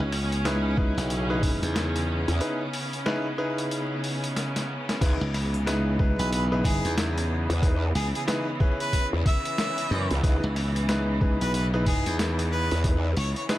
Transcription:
Already playing: C#3 B3 C#4
0.00 C#2
0.12 cross-stick, open hi-hat
0.32 closed hi-hat
0.45 D#4 E4 G#4 B4, snare, closed hi-hat
0.77 D#4 E4 G#4 B4, kick
0.97 B1, closed hi-hat
1.10 closed hi-hat
1.30 D#4 E4 G#4 B4
1.43 kick, open hi-hat
1.62 E2, closed hi-hat
1.76 snare, closed hi-hat
1.96 cross-stick, closed hi-hat
2.28 E2, closed hi-hat
2.41 D#4 E4 G#4 B4, closed hi-hat
2.73 open hi-hat
2.93 closed hi-hat
3.06 D#4 E4 G#4 B4, snare
3.38 D#4 E4 G#4 B4
3.58 closed hi-hat
3.71 closed hi-hat
4.04 open hi-hat
4.24 closed hi-hat
4.36 snare, closed hi-hat
4.56 snare, closed hi-hat
4.89 snare, closed hi-hat
5.01 C#2 E3 D#4 E4 G#4 B4, kick, closed hi-hat, crash
5.21 C#2
5.34 cross-stick, open hi-hat
5.54 closed hi-hat
5.66 D#4 E4 G#4 B4, snare, closed hi-hat
5.99 D#4 E4 G#4 B4, kick
6.18 B1 B4, closed hi-hat
6.31 B4, closed hi-hat
6.52 D#4 E4 G#4 B4
6.65 G#4, kick, open hi-hat
6.85 E2, closed hi-hat
6.98 snare, closed hi-hat
7.18 cross-stick, closed hi-hat
7.50 E2, closed hi-hat
7.62 D#4 E4 G#4 B4, kick, closed hi-hat
7.95 C#2 G#4, open hi-hat
8.15 G#4, closed hi-hat
8.28 D#4 E4 G#4 B4, snare, closed hi-hat
8.60 C#4 E4 G#4 B4, kick
8.80 B4, closed hi-hat
8.93 kick, closed hi-hat
9.13 E2
9.26 E5, kick, open hi-hat
9.45 closed hi-hat
9.58 snare, closed hi-hat
9.78 closed hi-hat
9.91 F#2
10.11 C#2, closed hi-hat
10.23 C#2 D#4 E4 G#4 B4, kick, closed hi-hat
10.44 C#2
10.56 cross-stick, open hi-hat
10.76 closed hi-hat
10.89 D#4 E4 G#4 B4, snare, closed hi-hat
11.21 D#4 E4 G#4 B4, kick
11.41 B1 B4, closed hi-hat
11.54 B4, closed hi-hat
11.74 D#4 E4 G#4 B4
11.86 G#4, kick, open hi-hat
12.06 E2, closed hi-hat
12.19 snare, closed hi-hat
12.39 cross-stick, closed hi-hat
12.52 B4
12.71 E2, closed hi-hat
12.84 D#4 E4 G#4 B4, kick, closed hi-hat
13.17 C#2 C#5, open hi-hat
13.36 C#5, closed hi-hat
13.49 D#4 E4 G#4 B4, snare, closed hi-hat

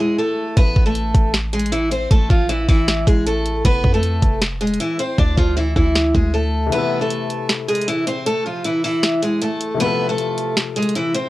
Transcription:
0.00 G#3 G#4
0.18 A3 A4
0.57 A1 B3 B4, kick, closed hi-hat
0.76 A1, kick
0.86 A3 A4
0.95 closed hi-hat
1.15 A1, kick, closed hi-hat
1.34 snare, closed hi-hat
1.53 G#3 G#4, closed hi-hat
1.60 closed hi-hat
1.66 closed hi-hat
1.72 E3 E4, closed hi-hat
1.91 C4 C5, closed hi-hat
2.11 A1 A3 A4, kick, closed hi-hat
2.30 A1 F3 F4, kick
2.49 E3 E4, closed hi-hat
2.68 A1 E3 E4, kick, open hi-hat
2.88 snare, closed hi-hat
3.07 A1 G#3 G#4, kick, closed hi-hat
3.26 A3 A4, closed hi-hat
3.45 closed hi-hat
3.65 F1 B3 B4, kick, closed hi-hat
3.84 F2, kick
3.94 A3 A4
4.03 closed hi-hat
4.22 F1, kick, closed hi-hat
4.42 snare, closed hi-hat
4.61 G#3 G#4, closed hi-hat
4.67 closed hi-hat
4.74 closed hi-hat
4.80 E3 E4, closed hi-hat
4.99 C4 C5, closed hi-hat
5.19 D2 D4 D5, kick
5.38 D2 F3 F4, kick
5.57 E3 E4
5.76 D2 E3 E4, kick
5.95 snare
6.15 D2 G#3 G#4, kick
6.34 A3 A4
6.67 C3 E3
6.72 A3 B3 E4 B4, closed hi-hat
6.78 A4
7.01 A3 A4
7.11 closed hi-hat
7.30 closed hi-hat
7.49 snare, closed hi-hat
7.68 G#3 G#4, closed hi-hat
7.75 closed hi-hat
7.81 closed hi-hat
7.88 E3 E4, closed hi-hat
8.07 C4 C5, closed hi-hat
8.26 A3 A4, closed hi-hat
8.46 F3 F4
8.64 E3 E4, closed hi-hat
8.84 E3 E4, open hi-hat
9.03 snare, closed hi-hat
9.22 G#3 G#4, closed hi-hat
9.42 A3 A4, closed hi-hat
9.61 closed hi-hat
9.74 C3 F3
9.80 A3 B3 F4 B4, closed hi-hat
9.85 A4
10.09 A3 A4
10.18 closed hi-hat
10.38 closed hi-hat
10.57 snare, closed hi-hat
10.76 G#3 G#4, closed hi-hat
10.83 closed hi-hat
10.89 closed hi-hat
10.95 E3 E4, closed hi-hat
11.15 C4 C5, closed hi-hat

